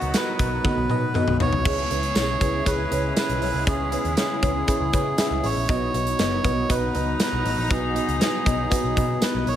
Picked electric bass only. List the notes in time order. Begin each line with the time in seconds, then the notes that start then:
0.02 C#2
0.39 B1
0.77 B1
0.90 B2
1.27 B1
1.40 B1
1.52 C2
1.65 C#2
1.91 C#2
2.15 B1
2.41 C#2
2.66 C#2
2.91 C#2
3.29 B1
3.42 B1
3.54 C2
3.67 C#2
4.05 D#2
4.43 C#2
4.80 C#2
4.93 C#3
5.31 C#2
5.43 A1
5.56 A#1
5.69 B1
5.94 B1
6.19 F#1
6.44 B1
6.70 B1
6.95 C#2
7.33 B1
7.45 A1
7.58 A#1
7.70 B1
8.08 C#2
8.46 B1
8.84 B1
8.97 B2
9.35 B1
9.47 B1